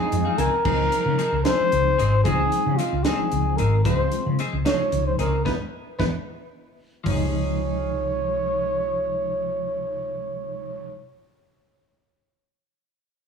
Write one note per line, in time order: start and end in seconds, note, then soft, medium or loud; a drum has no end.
0.00 0.34 F3 medium
0.00 0.35 G#3 medium
0.00 0.15 C4 soft
0.00 0.34 C4 medium
0.00 0.14 D#4 soft
0.00 0.35 D#4 medium
0.00 0.39 F4 medium
0.00 0.14 G#4 medium
0.00 0.40 G#4 medium
0.12 0.24 F2 medium
0.12 0.24 D#5 medium
0.12 closed hi-hat medium
0.25 0.37 C4 soft
0.25 0.37 D#4 medium
0.25 0.38 G#4 medium
0.25 0.38 F5 medium
0.38 0.50 C#2 medium
0.38 0.54 F3 medium
0.38 0.54 C4 medium
0.38 0.54 D#4 medium
0.38 0.55 G#4 medium
0.38 1.43 A#4 medium
0.38 0.64 G#5 medium
0.38 closed hi-hat medium
0.65 0.88 C#2 medium
0.65 0.81 F3 medium
0.65 1.15 F3 medium
0.65 1.15 G#3 medium
0.65 0.81 C4 medium
0.65 1.15 C4 medium
0.65 0.81 D#4 medium
0.65 1.15 D#4 medium
0.65 0.81 G#4 medium
0.65 kick loud
0.65 crash medium
0.92 closed hi-hat medium
1.06 1.17 C#3 medium
1.18 1.34 F3 medium
1.18 1.35 C4 medium
1.18 1.35 D#4 medium
1.18 1.35 G#4 medium
1.18 closed hi-hat medium
1.32 1.44 C#2 medium
1.44 1.95 F3 medium
1.44 1.62 F3 medium
1.44 1.95 G#3 medium
1.44 1.95 C4 soft
1.44 1.62 C4 medium
1.44 1.62 D#4 medium
1.44 1.95 D#4 medium
1.44 1.61 G#4 medium
1.44 2.21 C5 medium
1.44 snare loud
1.44 closed hi-hat medium
1.60 muted fretless electric bass stroke soft
1.72 1.96 C#2 medium
1.72 closed hi-hat medium
1.98 2.23 G#1 medium
1.98 2.15 C4 soft
1.98 2.15 D#4 soft
1.98 2.14 G#4 soft
1.98 closed hi-hat medium
2.24 2.48 C#2 medium
2.24 2.41 F3 medium
2.24 2.75 F3 medium
2.24 2.75 G#3 medium
2.24 2.41 C4 medium
2.24 2.75 C4 medium
2.24 2.41 D#4 medium
2.24 2.76 D#4 medium
2.24 2.78 G#4 medium
2.24 2.42 G#4 medium
2.24 kick medium
2.24 closed hi-hat medium
2.52 closed hi-hat medium
2.66 2.77 C#3 medium
2.77 2.95 F3 medium
2.77 2.95 C4 medium
2.77 2.95 D#4 medium
2.77 3.05 F4 medium
2.77 2.95 G#4 medium
2.77 closed hi-hat soft
2.93 3.04 C#2 medium
3.04 3.55 F3 medium
3.04 3.22 F3 soft
3.04 3.55 G#3 medium
3.04 3.22 C4 medium
3.04 3.55 C4 medium
3.04 3.21 D#4 medium
3.04 3.55 D#4 medium
3.04 3.58 G#4 medium
3.04 3.21 G#4 medium
3.04 snare medium
3.04 closed hi-hat medium
3.19 muted fretless electric bass stroke soft
3.32 3.56 C#2 medium
3.32 closed hi-hat medium
3.57 3.82 G#1 medium
3.57 3.75 C4 soft
3.57 3.75 D#4 soft
3.57 3.75 G#4 medium
3.57 3.84 A#4 medium
3.57 closed hi-hat medium
3.84 4.08 C#2 medium
3.84 4.01 F3 medium
3.84 4.35 F3 medium
3.84 4.35 G#3 medium
3.84 4.02 C4 medium
3.84 4.35 C4 medium
3.84 4.02 D#4 medium
3.84 4.36 F4 medium
3.84 4.02 G#4 medium
3.84 4.34 C5 medium
3.84 kick medium
3.84 closed hi-hat medium
4.12 closed hi-hat medium
4.26 4.38 C#3 medium
4.39 4.55 F3 medium
4.39 4.55 C4 medium
4.39 4.55 D#4 medium
4.39 4.56 G#4 medium
4.39 closed hi-hat medium
4.53 4.64 C#2 medium
4.65 5.16 C3 soft
4.65 5.15 F3 medium
4.65 4.82 F3 soft
4.65 5.15 G#3 medium
4.65 4.82 C4 medium
4.65 4.82 D#4 medium
4.65 5.15 D#4 medium
4.65 4.82 G#4 medium
4.65 5.03 C#5 medium
4.65 snare medium
4.65 closed hi-hat medium
4.79 muted fretless electric bass stroke soft
4.92 5.16 C#2 medium
4.92 closed hi-hat medium
5.06 5.18 C5 medium
5.19 5.42 C#2 medium
5.19 5.36 C4 soft
5.19 5.35 D#4 soft
5.19 5.35 G#4 soft
5.19 5.44 A#4 medium
5.19 closed hi-hat medium
5.45 5.56 E2 medium
5.45 5.55 E3 medium
5.45 5.55 G#3 medium
5.45 5.54 B3 medium
5.45 5.55 B3 medium
5.45 5.54 D#4 medium
5.45 5.54 E4 medium
5.45 5.52 B4 medium
5.45 kick medium
5.45 snare medium
5.99 6.09 E2 medium
5.99 6.08 E3 medium
5.99 6.08 G#3 medium
5.99 6.08 B3 medium
5.99 6.08 D#4 medium
5.99 6.08 E4 medium
5.99 6.05 B4 medium
5.99 kick medium
5.99 snare medium
7.04 10.92 C#2 medium
7.04 10.94 C3 medium
7.04 10.94 F3 medium
7.04 10.91 F3 medium
7.04 10.93 G#3 medium
7.04 10.93 C#5 medium
7.04 kick medium
7.04 floor tom medium
7.04 open hi-hat medium
7.09 10.95 D#4 medium
7.09 11.00 D#4 medium
7.13 11.03 G#4 medium